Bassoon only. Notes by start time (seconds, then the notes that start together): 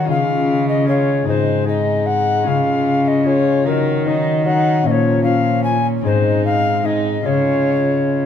Already playing: F#3
0.09 G#3
0.89 G#3
1.28 G#3
1.67 G#3
2.46 G#3
3.26 G#3
3.66 F#3
4.05 F#3
4.45 F#3
4.86 F3
5.25 F3
6.04 G#3
6.84 G#3
7.25 G#3